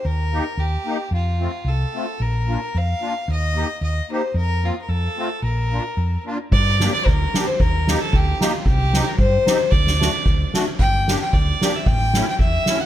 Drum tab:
CC |--------|--------|--------|--------|
SD |--------|--------|--------|--------|
BD |--------|--------|--------|--------|

CC |--------|--------|x-------|--------|
SD |--------|--------|--o---o-|--o---o-|
BD |--------|--------|o---o---|o---o---|

CC |--------|--------|--------|--------|
SD |--o---o-|-oo---o-|--o---o-|--o---o-|
BD |o---o---|o---o---|o---o---|o---o---|